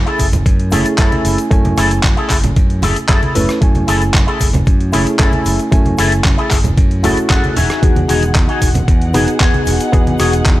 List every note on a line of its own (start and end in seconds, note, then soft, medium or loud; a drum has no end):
0.00 0.69 A3 medium
0.00 0.69 C#4 medium
0.00 0.69 E4 medium
0.00 0.70 G#5 medium
0.06 0.26 E4 medium
0.06 0.26 G#4 medium
0.06 0.27 A4 medium
0.06 closed hi-hat soft
0.19 0.41 F#1 medium
0.19 kick medium
0.19 open hi-hat medium
0.19 shaker medium
0.32 closed hi-hat soft
0.32 high conga medium
0.32 low conga medium
0.32 shaker medium
0.45 0.74 F#2 medium
0.45 muted clean electric guitar stroke soft
0.45 kick loud
0.45 closed hi-hat soft
0.45 shaker soft
0.60 closed hi-hat soft
0.71 0.83 F#1 medium
0.71 0.95 A3 medium
0.71 0.95 C#4 medium
0.71 0.85 E4 loud
0.71 0.96 E4 medium
0.71 0.86 G#4 medium
0.71 0.96 G#4 medium
0.71 0.86 A4 loud
0.71 open hi-hat loud
0.71 high conga medium
0.71 shaker loud
0.85 muted picked electric bass stroke soft
0.85 closed hi-hat medium
0.85 shaker medium
0.98 1.09 F#2 medium
0.98 1.48 A3 medium
0.98 1.48 C#4 medium
0.98 1.38 E4 medium
0.98 1.48 E4 medium
0.98 1.38 G#4 medium
0.98 1.39 A4 medium
0.98 1.48 G#5 medium
0.98 kick loud
0.98 clap loud
0.98 closed hi-hat medium
0.98 shaker soft
1.12 closed hi-hat soft
1.12 high conga medium
1.25 1.36 F#1 medium
1.25 open hi-hat medium
1.25 shaker medium
1.38 closed hi-hat medium
1.38 shaker medium
1.51 1.73 F#2 medium
1.51 3.32 A3 medium
1.51 3.32 C#4 medium
1.51 3.33 E4 medium
1.51 3.33 G#5 medium
1.51 kick loud
1.51 closed hi-hat soft
1.51 shaker soft
1.65 closed hi-hat soft
1.65 high conga loud
1.77 1.99 F#1 medium
1.77 1.91 E4 loud
1.77 1.91 G#4 loud
1.77 1.91 A4 loud
1.77 cross-stick medium
1.77 open hi-hat loud
1.77 shaker medium
1.91 closed hi-hat medium
1.91 shaker soft
2.03 2.15 F#2 medium
2.03 muted clean electric guitar stroke soft
2.03 kick loud
2.03 clap loud
2.03 closed hi-hat soft
2.03 high conga medium
2.03 shaker soft
2.17 2.36 E4 medium
2.17 2.37 G#4 medium
2.17 2.37 A4 medium
2.17 closed hi-hat soft
2.30 2.52 F#1 loud
2.30 kick medium
2.30 clap medium
2.30 open hi-hat medium
2.30 shaker medium
2.44 closed hi-hat soft
2.44 high conga medium
2.44 low conga loud
2.44 shaker medium
2.56 2.84 F#2 medium
2.56 muted clean electric guitar stroke soft
2.56 kick loud
2.56 closed hi-hat soft
2.56 shaker soft
2.70 closed hi-hat soft
2.82 2.94 F#1 medium
2.82 2.96 E4 loud
2.82 2.96 G#4 medium
2.82 2.97 A4 loud
2.82 open hi-hat loud
2.82 high conga medium
2.82 low conga medium
2.82 shaker medium
2.96 muted picked electric bass stroke soft
2.96 closed hi-hat soft
2.96 shaker soft
3.08 3.20 F#2 medium
3.08 3.48 E4 medium
3.08 3.49 G#4 medium
3.08 3.49 A4 medium
3.08 kick loud
3.08 clap loud
3.08 closed hi-hat medium
3.08 shaker soft
3.23 closed hi-hat soft
3.23 high conga medium
3.35 3.46 F#1 medium
3.35 3.58 A3 medium
3.35 3.59 C#4 medium
3.35 3.59 E4 medium
3.35 3.59 B4 medium
3.35 open hi-hat medium
3.35 low conga medium
3.35 shaker medium
3.49 cross-stick medium
3.49 closed hi-hat medium
3.49 shaker medium
3.61 3.83 F#2 loud
3.61 4.90 A3 medium
3.61 4.90 C#4 medium
3.61 4.91 E4 medium
3.61 4.91 G#5 medium
3.61 kick loud
3.61 closed hi-hat soft
3.61 shaker soft
3.75 closed hi-hat soft
3.75 high conga medium
3.87 4.10 F#1 medium
3.87 4.01 E4 loud
3.87 4.02 G#4 loud
3.87 4.02 A4 loud
3.87 open hi-hat loud
3.87 shaker medium
4.01 closed hi-hat soft
4.01 shaker soft
4.14 4.25 F#2 medium
4.14 muted clean electric guitar stroke soft
4.14 kick loud
4.14 clap loud
4.14 closed hi-hat soft
4.14 high conga medium
4.14 shaker soft
4.27 4.47 E4 medium
4.27 4.47 G#4 medium
4.27 4.48 A4 medium
4.27 closed hi-hat soft
4.40 4.62 F#1 loud
4.40 kick medium
4.40 open hi-hat medium
4.40 shaker medium
4.53 closed hi-hat soft
4.53 high conga loud
4.53 low conga medium
4.53 shaker soft
4.66 4.95 F#2 medium
4.66 muted clean electric guitar stroke soft
4.66 kick loud
4.66 closed hi-hat soft
4.66 shaker soft
4.81 closed hi-hat soft
4.92 5.04 F#1 medium
4.92 5.16 A3 medium
4.92 5.16 C#4 medium
4.92 5.06 E4 loud
4.92 5.17 E4 medium
4.92 5.07 G#4 loud
4.92 5.17 G#4 medium
4.92 5.07 A4 loud
4.92 open hi-hat loud
4.92 high conga medium
4.92 shaker medium
5.06 muted picked electric bass stroke soft
5.06 closed hi-hat soft
5.06 shaker soft
5.19 5.31 F#2 medium
5.19 5.69 A3 medium
5.19 5.69 C#4 medium
5.19 5.59 E4 medium
5.19 5.69 E4 medium
5.19 5.59 G#4 medium
5.19 5.60 A4 medium
5.19 5.69 G#5 medium
5.19 kick loud
5.19 clap loud
5.19 closed hi-hat soft
5.19 shaker soft
5.33 closed hi-hat soft
5.33 high conga loud
5.45 5.57 F#1 medium
5.45 open hi-hat medium
5.45 shaker medium
5.59 closed hi-hat soft
5.59 shaker soft
5.71 5.94 F#2 medium
5.71 7.01 A3 medium
5.71 7.01 C#4 medium
5.71 7.02 E4 medium
5.71 7.02 G#5 loud
5.71 kick loud
5.71 closed hi-hat soft
5.71 shaker soft
5.85 closed hi-hat soft
5.85 high conga medium
5.98 6.20 F#1 medium
5.98 6.12 E4 loud
5.98 6.12 G#4 loud
5.98 6.12 A4 loud
5.98 cross-stick medium
5.98 open hi-hat loud
5.98 shaker medium
6.12 closed hi-hat soft
6.12 shaker medium
6.24 6.36 F#2 medium
6.24 muted clean electric guitar stroke soft
6.24 kick loud
6.24 clap loud
6.24 closed hi-hat soft
6.24 high conga medium
6.24 shaker soft
6.37 6.57 E4 medium
6.37 6.58 G#4 medium
6.37 6.58 A4 medium
6.37 closed hi-hat soft
6.51 6.73 F#1 loud
6.51 kick medium
6.51 clap medium
6.51 open hi-hat medium
6.51 shaker medium
6.64 closed hi-hat soft
6.64 high conga medium
6.64 low conga medium
6.64 shaker soft
6.77 7.05 F#2 loud
6.77 muted clean electric guitar stroke soft
6.77 kick loud
6.77 closed hi-hat soft
6.77 shaker soft
6.91 closed hi-hat soft
7.03 7.15 F#1 medium
7.03 7.55 A3 medium
7.03 7.55 C#4 medium
7.03 7.17 E4 loud
7.03 7.55 E4 medium
7.03 7.55 F#4 medium
7.03 7.17 G#4 medium
7.03 7.18 A4 loud
7.03 open hi-hat loud
7.03 high conga medium
7.03 low conga medium
7.03 shaker medium
7.17 muted picked electric bass stroke soft
7.17 closed hi-hat soft
7.17 shaker soft
7.29 7.41 F#2 medium
7.29 7.55 E4 medium
7.29 7.56 G#4 medium
7.29 7.57 A4 medium
7.29 7.55 F#5 medium
7.29 kick loud
7.29 clap loud
7.29 closed hi-hat soft
7.29 shaker soft
7.44 closed hi-hat soft
7.44 high conga medium
7.56 7.67 E1 medium
7.56 7.98 D#4 medium
7.56 7.99 F#4 medium
7.56 7.99 G#4 medium
7.56 7.81 E5 medium
7.56 open hi-hat medium
7.56 low conga medium
7.56 shaker medium
7.70 cross-stick medium
7.70 closed hi-hat medium
7.70 shaker soft
7.82 8.04 E2 medium
7.82 9.11 D#3 medium
7.82 9.11 B3 medium
7.82 10.60 D#4 medium
7.82 9.11 F#4 medium
7.82 10.60 G#4 medium
7.82 9.12 G#4 medium
7.82 10.60 F#5 medium
7.82 kick loud
7.82 closed hi-hat soft
7.82 shaker soft
7.96 closed hi-hat soft
7.96 high conga medium
8.08 8.31 E1 medium
8.08 8.22 D#4 loud
8.08 8.23 F#4 medium
8.08 8.23 G#4 loud
8.08 open hi-hat loud
8.08 shaker medium
8.23 closed hi-hat soft
8.23 shaker medium
8.34 8.46 E2 medium
8.34 kick loud
8.34 clap loud
8.34 closed hi-hat soft
8.34 high conga medium
8.34 shaker soft
8.48 8.68 D#4 medium
8.48 8.69 F#4 medium
8.48 8.69 G#4 medium
8.48 closed hi-hat soft
8.62 8.83 E1 loud
8.62 kick medium
8.62 open hi-hat medium
8.62 shaker loud
8.74 closed hi-hat soft
8.74 high conga medium
8.74 low conga medium
8.74 shaker soft
8.87 9.16 E2 medium
8.87 muted clean electric guitar stroke soft
8.87 kick loud
8.87 closed hi-hat soft
8.87 shaker soft
9.02 closed hi-hat soft
9.14 9.25 E1 medium
9.14 9.37 B3 medium
9.14 9.27 D#4 loud
9.14 9.38 D#4 medium
9.14 9.28 F#4 medium
9.14 9.38 F#4 medium
9.14 9.38 G#4 loud
9.14 9.28 G#4 loud
9.14 open hi-hat loud
9.14 high conga medium
9.14 shaker medium
9.27 muted picked electric bass stroke soft
9.27 closed hi-hat soft
9.27 shaker soft
9.40 9.52 E2 medium
9.40 9.90 B3 medium
9.40 9.80 D#4 medium
9.40 9.90 D#4 medium
9.40 9.80 F#4 medium
9.40 9.90 F#4 medium
9.40 9.90 G#4 medium
9.40 9.81 G#4 medium
9.40 kick loud
9.40 clap loud
9.40 closed hi-hat soft
9.40 shaker soft
9.54 closed hi-hat soft
9.54 high conga medium
9.66 9.78 E1 medium
9.66 open hi-hat medium
9.66 shaker medium
9.80 closed hi-hat medium
9.80 shaker medium
9.92 10.15 E2 loud
9.92 10.60 B3 medium
9.92 10.60 D#4 medium
9.92 10.60 F#4 medium
9.92 10.60 G#4 loud
9.92 kick loud
9.92 closed hi-hat soft
9.92 shaker soft
10.07 closed hi-hat soft
10.07 high conga medium
10.19 10.41 E1 medium
10.19 10.33 D#4 loud
10.19 10.33 F#4 medium
10.19 10.33 G#4 loud
10.19 cross-stick medium
10.19 open hi-hat loud
10.19 shaker medium
10.33 closed hi-hat soft
10.33 shaker soft
10.45 10.57 E2 medium
10.45 muted clean electric guitar stroke soft
10.45 kick loud
10.45 clap loud
10.45 closed hi-hat soft
10.45 high conga medium
10.45 shaker soft